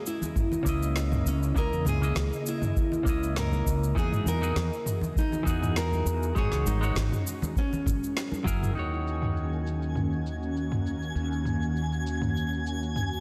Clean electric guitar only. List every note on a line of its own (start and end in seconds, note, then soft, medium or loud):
0.63 1.51 C#3 medium
0.63 1.52 A#3 medium
0.67 1.53 E4 medium
0.67 1.54 D#5 medium
1.54 1.97 C#3 medium
1.54 1.98 A#3 medium
1.54 1.98 E4 medium
1.54 1.99 D#5 medium
2.01 2.15 C#3 medium
2.01 2.16 A#3 medium
2.01 2.16 E4 medium
2.01 2.17 D#5 loud
3.03 3.91 C#3 medium
3.03 3.92 A#3 medium
3.03 3.93 E4 medium
3.09 3.94 D#5 medium
3.95 4.38 E3 medium
3.95 4.38 D#4 medium
3.95 4.39 F#4 medium
3.95 4.39 G#4 medium
4.41 4.55 E3 medium
4.41 4.56 D#4 medium
4.41 4.56 F#4 medium
4.41 4.57 G#4 loud
5.43 6.31 E3 medium
5.43 6.32 D#4 medium
5.43 6.33 F#4 medium
5.49 6.34 G#4 medium
6.35 6.78 G#3 medium
6.35 6.78 D#4 medium
6.35 6.79 F#4 medium
6.35 6.79 C#5 medium
6.81 6.95 G#3 medium
6.81 6.96 D#4 medium
6.81 6.96 F#4 medium
6.81 6.97 C#5 loud
8.44 8.72 F#3 medium
8.44 8.72 E4 medium
8.44 8.73 G#4 medium
8.44 8.73 A#4 loud
8.73 13.20 D#3 medium
8.73 13.20 D#4 medium
8.77 13.20 F#4 medium
8.77 13.20 C#5 medium